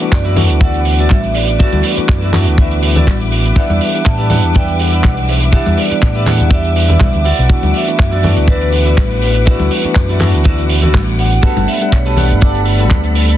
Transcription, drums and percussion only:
0.00 closed hi-hat medium
0.12 kick loud
0.12 clap loud
0.12 closed hi-hat medium
0.25 closed hi-hat soft
0.36 open hi-hat loud
0.36 high conga medium
0.36 low conga loud
0.50 closed hi-hat medium
0.61 kick loud
0.61 closed hi-hat medium
0.74 closed hi-hat soft
0.85 open hi-hat loud
0.99 closed hi-hat medium
1.10 kick loud
1.10 clap loud
1.10 closed hi-hat medium
1.10 high conga medium
1.23 closed hi-hat soft
1.35 open hi-hat loud
1.48 closed hi-hat medium
1.60 kick loud
1.60 closed hi-hat medium
1.73 closed hi-hat soft
1.73 high conga medium
1.83 open hi-hat loud
1.98 closed hi-hat medium
2.09 kick loud
2.09 clap loud
2.09 closed hi-hat medium
2.22 closed hi-hat soft
2.33 clap medium
2.33 open hi-hat loud
2.33 low conga loud
2.47 closed hi-hat medium
2.58 kick loud
2.58 closed hi-hat medium
2.71 closed hi-hat soft
2.83 open hi-hat loud
2.96 closed hi-hat medium
2.96 low conga medium
3.07 kick loud
3.07 clap loud
3.07 closed hi-hat medium
3.07 high conga loud
3.21 closed hi-hat soft
3.32 open hi-hat loud
3.45 closed hi-hat medium
3.56 kick loud
3.56 closed hi-hat medium
3.70 closed hi-hat soft
3.70 high conga medium
3.81 open hi-hat loud
3.95 closed hi-hat medium
4.06 kick loud
4.06 clap loud
4.06 closed hi-hat medium
4.20 closed hi-hat soft
4.30 open hi-hat loud
4.30 high conga medium
4.30 low conga medium
4.43 closed hi-hat medium
4.55 kick loud
4.55 closed hi-hat medium
4.68 closed hi-hat soft
4.79 open hi-hat loud
4.92 closed hi-hat medium
5.04 kick loud
5.04 clap loud
5.04 closed hi-hat medium
5.04 high conga loud
5.17 closed hi-hat soft
5.29 open hi-hat loud
5.43 closed hi-hat medium
5.53 kick loud
5.53 closed hi-hat medium
5.66 closed hi-hat soft
5.66 high conga medium
5.78 open hi-hat loud
5.91 closed hi-hat medium
6.02 kick loud
6.02 clap loud
6.02 closed hi-hat medium
6.15 closed hi-hat soft
6.26 clap medium
6.26 open hi-hat loud
6.26 low conga medium
6.40 closed hi-hat medium
6.51 kick loud
6.51 closed hi-hat medium
6.65 closed hi-hat soft
6.76 open hi-hat loud
6.90 closed hi-hat medium
6.90 low conga medium
7.00 kick loud
7.00 clap loud
7.00 closed hi-hat medium
7.00 high conga loud
7.13 closed hi-hat soft
7.25 open hi-hat loud
7.39 closed hi-hat medium
7.50 kick loud
7.50 closed hi-hat medium
7.63 closed hi-hat soft
7.63 high conga medium
7.74 open hi-hat loud
7.88 closed hi-hat medium
7.99 kick loud
7.99 clap loud
7.99 closed hi-hat medium
8.12 closed hi-hat soft
8.23 open hi-hat medium
8.23 high conga medium
8.23 low conga medium
8.37 closed hi-hat medium
8.48 kick loud
8.48 closed hi-hat medium
8.61 closed hi-hat soft
8.73 open hi-hat loud
8.86 closed hi-hat medium
8.97 kick loud
8.97 clap loud
8.97 closed hi-hat medium
8.97 high conga medium
9.11 closed hi-hat soft
9.22 open hi-hat loud
9.35 closed hi-hat medium
9.46 kick loud
9.46 closed hi-hat medium
9.60 closed hi-hat soft
9.60 high conga medium
9.71 open hi-hat loud
9.84 closed hi-hat medium
9.95 kick loud
9.95 clap loud
9.95 closed hi-hat medium
10.09 closed hi-hat medium
10.20 clap medium
10.20 open hi-hat loud
10.20 low conga medium
10.34 closed hi-hat medium
10.44 kick loud
10.44 closed hi-hat medium
10.58 closed hi-hat soft
10.69 open hi-hat loud
10.82 closed hi-hat medium
10.82 low conga medium
10.94 kick loud
10.94 clap loud
10.94 closed hi-hat medium
10.94 high conga loud
11.07 closed hi-hat soft
11.19 open hi-hat medium
11.32 closed hi-hat medium
11.43 kick loud
11.43 closed hi-hat medium
11.57 closed hi-hat soft
11.57 high conga medium
11.68 open hi-hat loud
11.82 closed hi-hat medium
11.92 kick loud
11.92 clap loud
11.92 closed hi-hat medium
12.06 closed hi-hat soft
12.17 open hi-hat medium
12.17 high conga medium
12.17 low conga medium
12.31 closed hi-hat medium
12.41 kick loud
12.41 closed hi-hat medium
12.55 closed hi-hat soft
12.66 open hi-hat loud
12.79 closed hi-hat medium
12.91 kick loud
12.91 clap loud
12.91 closed hi-hat medium
12.91 high conga medium
13.04 closed hi-hat soft
13.15 open hi-hat loud
13.29 closed hi-hat medium

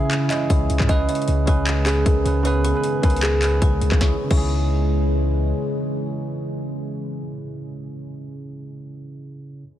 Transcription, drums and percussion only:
0.11 clap loud
0.11 closed hi-hat medium
0.31 clap medium
0.31 closed hi-hat medium
0.50 kick loud
0.50 closed hi-hat medium
0.70 closed hi-hat medium
0.80 kick loud
0.80 clap medium
0.89 kick loud
0.89 closed hi-hat medium
1.09 closed hi-hat medium
1.15 closed hi-hat medium
1.22 closed hi-hat soft
1.28 closed hi-hat medium
1.47 kick loud
1.47 closed hi-hat medium
1.67 clap loud
1.67 closed hi-hat medium
1.86 clap medium
1.86 closed hi-hat medium
2.06 kick loud
2.06 closed hi-hat medium
2.26 closed hi-hat medium
2.45 closed hi-hat medium
2.65 closed hi-hat medium
2.84 closed hi-hat medium
3.03 kick loud
3.03 closed hi-hat medium
3.03 open hi-hat medium
3.10 closed hi-hat medium
3.16 closed hi-hat medium
3.23 clap loud
3.23 closed hi-hat medium
3.42 clap medium
3.42 closed hi-hat medium
3.62 kick loud
3.62 closed hi-hat medium
3.81 closed hi-hat medium
3.92 kick loud
3.92 clap medium
4.01 kick loud
4.01 snare medium
4.31 kick loud
4.31 crash medium

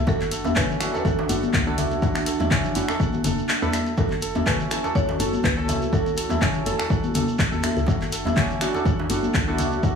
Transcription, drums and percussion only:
0.07 kick loud
0.07 djembe slap medium
0.07 shekere soft
0.21 clap soft
0.21 muted conga medium
0.21 shekere soft
0.31 open hi-hat medium
0.31 shekere loud
0.44 djembe slap medium
0.44 muted conga soft
0.44 high conga medium
0.44 djembe tone medium
0.44 djembe bass medium
0.44 shekere soft
0.56 kick loud
0.56 clap loud
0.56 mid tom loud
0.56 shekere medium
0.70 low conga medium
0.70 shekere soft
0.81 finger snap medium
0.81 open hi-hat medium
0.81 muted conga medium
0.81 shekere loud
0.94 djembe slap medium
0.94 shekere soft
1.05 kick loud
1.05 muted conga soft
1.05 djembe tone medium
1.05 high conga medium
1.05 djembe bass loud
1.05 low conga medium
1.05 shekere medium
1.19 djembe slap loud
1.29 open hi-hat medium
1.29 muted conga medium
1.29 shekere medium
1.43 high conga loud
1.43 shekere soft
1.54 kick loud
1.54 clap loud
1.54 muted conga soft
1.54 high conga medium
1.54 djembe tone medium
1.54 shekere medium
1.67 high conga medium
1.78 open hi-hat medium
1.78 mid tom medium
1.78 djembe tone medium
1.78 shekere medium
1.91 muted conga medium
1.91 shekere soft
2.02 kick loud
2.02 djembe slap medium
2.02 shekere medium
2.15 finger snap medium
2.15 clap soft
2.15 muted conga medium
2.15 shekere soft
2.26 open hi-hat medium
2.26 shekere loud
2.40 muted conga soft
2.40 djembe slap medium
2.40 high conga loud
2.40 djembe tone medium
2.40 low conga medium
2.40 djembe bass loud
2.40 shekere soft
2.51 kick loud
2.51 clap loud
2.51 mid tom loud
2.51 shekere soft
2.64 low conga medium
2.64 shekere soft
2.75 open hi-hat medium
2.75 muted conga medium
2.75 shekere medium
2.88 finger snap medium
2.88 djembe slap medium
2.88 shekere soft
3.00 kick loud
3.00 muted conga soft
3.00 high conga medium
3.00 shekere soft
3.13 high conga medium
3.13 shekere soft
3.24 open hi-hat medium
3.24 mid tom loud
3.24 muted conga medium
3.24 djembe tone medium
3.24 high conga medium
3.24 shekere loud
3.38 shekere soft
3.48 clap loud
3.48 muted conga soft
3.48 shekere soft
3.62 high conga medium
3.62 djembe bass medium
3.62 shekere soft
3.73 finger snap medium
3.73 open hi-hat medium
3.73 high conga loud
3.73 djembe tone medium
3.73 shekere medium
3.86 muted conga medium
3.86 shekere soft
3.97 kick loud
3.97 djembe slap medium
3.97 shekere medium
4.09 clap soft
4.09 muted conga medium
4.09 shekere soft
4.22 open hi-hat medium
4.22 shekere medium
4.35 muted conga soft
4.35 djembe slap medium
4.35 high conga loud
4.35 djembe tone medium
4.35 djembe bass medium
4.35 shekere soft
4.46 kick loud
4.46 clap loud
4.46 mid tom loud
4.46 shekere medium
4.60 low conga medium
4.60 shekere soft
4.71 finger snap loud
4.71 open hi-hat medium
4.71 muted conga medium
4.71 shekere loud
4.84 djembe slap medium
4.84 shekere soft
4.95 kick loud
4.95 muted conga soft
4.95 high conga medium
4.95 djembe tone medium
4.95 low conga medium
4.95 djembe bass loud
4.95 shekere medium
5.09 djembe slap loud
5.20 open hi-hat medium
5.20 muted conga soft
5.20 shekere loud
5.33 high conga loud
5.33 shekere soft
5.43 kick loud
5.43 clap loud
5.43 muted conga soft
5.43 djembe tone medium
5.43 high conga loud
5.43 shekere soft
5.58 high conga medium
5.68 open hi-hat medium
5.68 mid tom medium
5.68 djembe tone loud
5.68 shekere loud
5.82 muted conga medium
5.82 shekere soft
5.93 kick loud
5.93 shekere medium
6.06 muted conga medium
6.06 shekere soft
6.17 open hi-hat medium
6.17 shekere loud
6.29 djembe slap medium
6.29 muted conga soft
6.29 djembe tone medium
6.29 high conga loud
6.29 djembe bass medium
6.29 low conga medium
6.29 shekere soft
6.42 kick loud
6.42 clap loud
6.42 mid tom medium
6.42 shekere medium
6.54 low conga medium
6.54 shekere soft
6.66 open hi-hat medium
6.66 muted conga medium
6.66 shekere medium
6.79 finger snap medium
6.79 djembe slap medium
6.79 shekere soft
6.90 kick loud
6.90 muted conga soft
6.90 shekere medium
7.03 high conga loud
7.03 shekere soft
7.14 open hi-hat loud
7.14 mid tom loud
7.14 muted conga medium
7.14 high conga loud
7.14 djembe tone loud
7.14 shekere loud
7.28 shekere soft
7.38 kick loud
7.38 clap loud
7.38 shekere medium
7.52 high conga medium
7.52 djembe bass medium
7.52 shekere soft
7.63 finger snap loud
7.63 open hi-hat medium
7.63 djembe tone loud
7.63 high conga medium
7.63 shekere medium
7.77 muted conga medium
7.77 shekere soft
7.87 kick loud
7.87 djembe slap medium
7.87 shekere medium
8.01 clap soft
8.01 muted conga medium
8.01 shekere soft
8.12 open hi-hat medium
8.12 shekere loud
8.25 muted conga soft
8.25 djembe slap medium
8.25 djembe tone medium
8.25 high conga loud
8.25 djembe bass medium
8.25 shekere soft
8.37 kick loud
8.37 clap loud
8.37 mid tom medium
8.37 shekere soft
8.50 low conga medium
8.50 shekere soft
8.61 finger snap loud
8.61 open hi-hat medium
8.61 muted conga medium
8.61 shekere loud
8.74 djembe slap medium
8.74 shekere soft
8.85 kick loud
8.85 muted conga soft
8.85 djembe tone medium
8.85 high conga medium
8.85 djembe bass loud
8.85 low conga medium
8.85 shekere medium
9.00 djembe slap medium
9.10 open hi-hat medium
9.10 muted conga medium
9.10 shekere medium
9.23 high conga loud
9.23 shekere soft
9.34 kick loud
9.34 clap loud
9.34 muted conga soft
9.34 high conga loud
9.34 djembe tone medium
9.34 shekere medium
9.49 high conga medium
9.59 open hi-hat medium
9.59 mid tom medium
9.59 djembe tone medium
9.59 shekere medium
9.72 muted conga soft
9.72 shekere soft
9.83 kick loud
9.83 shekere medium

